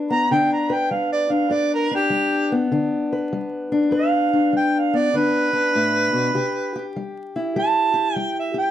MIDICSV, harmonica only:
0, 0, Header, 1, 2, 480
1, 0, Start_track
1, 0, Tempo, 604839
1, 1205, Time_signature, 4, 2, 24, 8
1, 6911, End_track
2, 0, Start_track
2, 0, Title_t, "Harmonica"
2, 0, Program_c, 0, 22
2, 89, Note_on_c, 0, 82, 109
2, 241, Note_off_c, 0, 82, 0
2, 250, Note_on_c, 0, 79, 90
2, 402, Note_off_c, 0, 79, 0
2, 419, Note_on_c, 0, 82, 79
2, 580, Note_on_c, 0, 79, 85
2, 592, Note_off_c, 0, 82, 0
2, 715, Note_off_c, 0, 79, 0
2, 720, Note_on_c, 0, 77, 81
2, 878, Note_off_c, 0, 77, 0
2, 890, Note_on_c, 0, 74, 85
2, 1043, Note_on_c, 0, 77, 84
2, 1054, Note_off_c, 0, 74, 0
2, 1208, Note_on_c, 0, 74, 93
2, 1220, Note_off_c, 0, 77, 0
2, 1362, Note_off_c, 0, 74, 0
2, 1381, Note_on_c, 0, 70, 88
2, 1529, Note_off_c, 0, 70, 0
2, 1549, Note_on_c, 0, 67, 90
2, 2005, Note_off_c, 0, 67, 0
2, 3158, Note_on_c, 0, 77, 104
2, 3610, Note_off_c, 0, 77, 0
2, 3623, Note_on_c, 0, 79, 80
2, 3797, Note_on_c, 0, 77, 87
2, 3809, Note_off_c, 0, 79, 0
2, 3946, Note_on_c, 0, 74, 89
2, 3958, Note_off_c, 0, 77, 0
2, 4103, Note_on_c, 0, 71, 104
2, 4115, Note_off_c, 0, 74, 0
2, 5501, Note_off_c, 0, 71, 0
2, 6024, Note_on_c, 0, 81, 106
2, 6468, Note_off_c, 0, 81, 0
2, 6468, Note_on_c, 0, 79, 106
2, 6632, Note_off_c, 0, 79, 0
2, 6660, Note_on_c, 0, 76, 84
2, 6805, Note_off_c, 0, 76, 0
2, 6809, Note_on_c, 0, 79, 85
2, 6911, Note_off_c, 0, 79, 0
2, 6911, End_track
0, 0, End_of_file